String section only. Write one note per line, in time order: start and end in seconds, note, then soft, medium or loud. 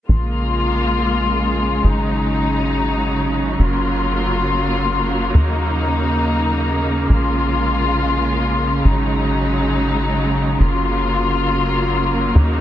0.09 5.31 C#3 medium
0.09 3.56 G#3 medium
0.09 1.82 A#3 medium
0.09 1.82 F4 medium
1.84 7.06 F#3 medium
1.84 3.58 D#4 medium
3.59 8.81 A#3 medium
3.59 5.33 F4 medium
5.35 12.31 C#3 medium
5.35 7.08 D#4 medium
7.10 8.83 G#3 medium
7.10 8.83 F4 medium
8.85 10.58 F#3 medium
8.85 10.58 G#3 medium
8.85 10.58 D#4 medium
10.60 12.61 F#3 medium
10.60 12.61 A#3 medium
10.60 12.34 F4 medium
12.35 12.61 C#3 medium
12.35 12.61 D#4 medium